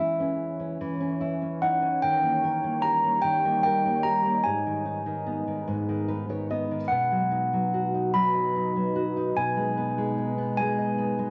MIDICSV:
0, 0, Header, 1, 4, 480
1, 0, Start_track
1, 0, Key_signature, 5, "minor"
1, 0, Tempo, 808625
1, 1202, Time_signature, 6, 3, 24, 8
1, 3118, Tempo, 816327
1, 6675, End_track
2, 0, Start_track
2, 0, Title_t, "Handbells"
2, 0, Program_c, 0, 14
2, 0, Note_on_c, 0, 76, 68
2, 456, Note_off_c, 0, 76, 0
2, 961, Note_on_c, 0, 78, 72
2, 1070, Note_off_c, 0, 78, 0
2, 1201, Note_on_c, 0, 79, 85
2, 1658, Note_off_c, 0, 79, 0
2, 1675, Note_on_c, 0, 82, 92
2, 1910, Note_on_c, 0, 79, 85
2, 1925, Note_off_c, 0, 82, 0
2, 2149, Note_off_c, 0, 79, 0
2, 2157, Note_on_c, 0, 79, 75
2, 2394, Note_on_c, 0, 82, 80
2, 2404, Note_off_c, 0, 79, 0
2, 2633, Note_on_c, 0, 80, 76
2, 2643, Note_off_c, 0, 82, 0
2, 3816, Note_off_c, 0, 80, 0
2, 4075, Note_on_c, 0, 78, 68
2, 4815, Note_on_c, 0, 83, 80
2, 4827, Note_off_c, 0, 78, 0
2, 5537, Note_on_c, 0, 80, 81
2, 5555, Note_off_c, 0, 83, 0
2, 6239, Note_off_c, 0, 80, 0
2, 6247, Note_on_c, 0, 80, 84
2, 6675, Note_off_c, 0, 80, 0
2, 6675, End_track
3, 0, Start_track
3, 0, Title_t, "Nylon-string guitar"
3, 0, Program_c, 1, 24
3, 0, Note_on_c, 1, 52, 62
3, 0, Note_on_c, 1, 61, 43
3, 0, Note_on_c, 1, 64, 51
3, 111, Note_off_c, 1, 61, 0
3, 118, Note_on_c, 1, 61, 46
3, 347, Note_off_c, 1, 61, 0
3, 354, Note_on_c, 1, 61, 41
3, 473, Note_off_c, 1, 52, 0
3, 480, Note_on_c, 1, 52, 63
3, 589, Note_off_c, 1, 61, 0
3, 596, Note_on_c, 1, 61, 46
3, 709, Note_off_c, 1, 64, 0
3, 716, Note_on_c, 1, 64, 49
3, 835, Note_off_c, 1, 61, 0
3, 842, Note_on_c, 1, 61, 45
3, 964, Note_on_c, 1, 63, 53
3, 1074, Note_off_c, 1, 61, 0
3, 1081, Note_on_c, 1, 61, 46
3, 1180, Note_off_c, 1, 52, 0
3, 1185, Note_off_c, 1, 64, 0
3, 1196, Note_off_c, 1, 63, 0
3, 1198, Note_off_c, 1, 61, 0
3, 1208, Note_on_c, 1, 51, 68
3, 1322, Note_on_c, 1, 58, 45
3, 1448, Note_on_c, 1, 70, 51
3, 1560, Note_off_c, 1, 58, 0
3, 1567, Note_on_c, 1, 58, 45
3, 1683, Note_on_c, 1, 67, 48
3, 1797, Note_off_c, 1, 58, 0
3, 1804, Note_on_c, 1, 58, 44
3, 1916, Note_off_c, 1, 51, 0
3, 1924, Note_on_c, 1, 51, 64
3, 2041, Note_off_c, 1, 58, 0
3, 2048, Note_on_c, 1, 58, 47
3, 2161, Note_off_c, 1, 70, 0
3, 2168, Note_on_c, 1, 70, 46
3, 2280, Note_off_c, 1, 58, 0
3, 2288, Note_on_c, 1, 58, 51
3, 2393, Note_off_c, 1, 67, 0
3, 2400, Note_on_c, 1, 67, 51
3, 2517, Note_off_c, 1, 58, 0
3, 2524, Note_on_c, 1, 58, 48
3, 2617, Note_off_c, 1, 51, 0
3, 2628, Note_off_c, 1, 70, 0
3, 2631, Note_off_c, 1, 67, 0
3, 2637, Note_off_c, 1, 58, 0
3, 2644, Note_on_c, 1, 44, 62
3, 2768, Note_on_c, 1, 51, 41
3, 2881, Note_on_c, 1, 63, 49
3, 2997, Note_off_c, 1, 51, 0
3, 3004, Note_on_c, 1, 51, 44
3, 3125, Note_on_c, 1, 59, 45
3, 3242, Note_off_c, 1, 51, 0
3, 3249, Note_on_c, 1, 51, 43
3, 3360, Note_off_c, 1, 44, 0
3, 3367, Note_on_c, 1, 44, 59
3, 3485, Note_off_c, 1, 51, 0
3, 3492, Note_on_c, 1, 51, 44
3, 3600, Note_off_c, 1, 63, 0
3, 3606, Note_on_c, 1, 63, 45
3, 3607, Note_on_c, 1, 71, 55
3, 3715, Note_off_c, 1, 71, 0
3, 3724, Note_off_c, 1, 51, 0
3, 3730, Note_on_c, 1, 51, 46
3, 3733, Note_on_c, 1, 73, 57
3, 3839, Note_off_c, 1, 73, 0
3, 3846, Note_off_c, 1, 59, 0
3, 3853, Note_on_c, 1, 59, 49
3, 3855, Note_on_c, 1, 75, 64
3, 3969, Note_off_c, 1, 51, 0
3, 3976, Note_on_c, 1, 51, 44
3, 4067, Note_off_c, 1, 44, 0
3, 4073, Note_off_c, 1, 63, 0
3, 4074, Note_off_c, 1, 75, 0
3, 4083, Note_off_c, 1, 59, 0
3, 4087, Note_off_c, 1, 51, 0
3, 4095, Note_on_c, 1, 47, 63
3, 4213, Note_on_c, 1, 54, 44
3, 4330, Note_on_c, 1, 63, 49
3, 4450, Note_off_c, 1, 54, 0
3, 4457, Note_on_c, 1, 54, 48
3, 4580, Note_on_c, 1, 66, 49
3, 4693, Note_off_c, 1, 63, 0
3, 4700, Note_on_c, 1, 63, 43
3, 4812, Note_off_c, 1, 54, 0
3, 4819, Note_on_c, 1, 54, 68
3, 4935, Note_on_c, 1, 75, 43
3, 5054, Note_off_c, 1, 63, 0
3, 5061, Note_on_c, 1, 63, 47
3, 5173, Note_off_c, 1, 54, 0
3, 5180, Note_on_c, 1, 54, 47
3, 5288, Note_off_c, 1, 66, 0
3, 5295, Note_on_c, 1, 66, 56
3, 5411, Note_off_c, 1, 63, 0
3, 5418, Note_on_c, 1, 63, 50
3, 5513, Note_off_c, 1, 47, 0
3, 5516, Note_off_c, 1, 75, 0
3, 5525, Note_off_c, 1, 54, 0
3, 5526, Note_off_c, 1, 66, 0
3, 5531, Note_off_c, 1, 63, 0
3, 5538, Note_on_c, 1, 47, 63
3, 5654, Note_on_c, 1, 56, 44
3, 5775, Note_on_c, 1, 59, 45
3, 5889, Note_off_c, 1, 56, 0
3, 5896, Note_on_c, 1, 56, 45
3, 6013, Note_on_c, 1, 63, 49
3, 6125, Note_off_c, 1, 59, 0
3, 6132, Note_on_c, 1, 59, 43
3, 6253, Note_off_c, 1, 56, 0
3, 6260, Note_on_c, 1, 56, 65
3, 6371, Note_on_c, 1, 75, 45
3, 6479, Note_off_c, 1, 59, 0
3, 6486, Note_on_c, 1, 59, 51
3, 6601, Note_off_c, 1, 56, 0
3, 6608, Note_on_c, 1, 56, 52
3, 6675, Note_off_c, 1, 47, 0
3, 6675, Note_off_c, 1, 56, 0
3, 6675, Note_off_c, 1, 59, 0
3, 6675, Note_off_c, 1, 63, 0
3, 6675, Note_off_c, 1, 75, 0
3, 6675, End_track
4, 0, Start_track
4, 0, Title_t, "Ambient pad"
4, 0, Program_c, 2, 92
4, 0, Note_on_c, 2, 52, 71
4, 0, Note_on_c, 2, 61, 66
4, 0, Note_on_c, 2, 73, 79
4, 1183, Note_off_c, 2, 61, 0
4, 1185, Note_off_c, 2, 52, 0
4, 1195, Note_on_c, 2, 55, 70
4, 1196, Note_on_c, 2, 63, 70
4, 2609, Note_off_c, 2, 73, 0
4, 2620, Note_off_c, 2, 55, 0
4, 2646, Note_on_c, 2, 71, 83
4, 2647, Note_on_c, 2, 56, 78
4, 4058, Note_off_c, 2, 63, 0
4, 4074, Note_off_c, 2, 71, 0
4, 4075, Note_off_c, 2, 56, 0
4, 4082, Note_on_c, 2, 54, 76
4, 4084, Note_on_c, 2, 63, 65
4, 4085, Note_on_c, 2, 71, 84
4, 5516, Note_off_c, 2, 54, 0
4, 5526, Note_on_c, 2, 56, 69
4, 5533, Note_on_c, 2, 47, 70
4, 6675, Note_off_c, 2, 47, 0
4, 6675, Note_off_c, 2, 56, 0
4, 6675, Note_off_c, 2, 63, 0
4, 6675, Note_off_c, 2, 71, 0
4, 6675, End_track
0, 0, End_of_file